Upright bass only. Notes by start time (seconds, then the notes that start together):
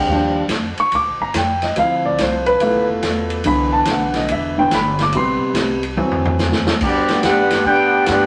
0.07 D#2
0.48 F2
0.77 muted upright bass stroke
0.92 D2
1.06 A#1
1.21 G1
1.34 F2
1.77 D2
2.19 C2
2.61 B1
2.74 G1
2.89 F1
3.02 E2
3.45 C2
3.87 B1
4.30 E1
4.72 G1
5.13 A1
5.41 muted upright bass stroke
5.53 C2
5.96 D2
6.39 E2
6.81 G2
7.10 muted upright bass stroke
7.24 F#2
7.65 A2
8.08 G2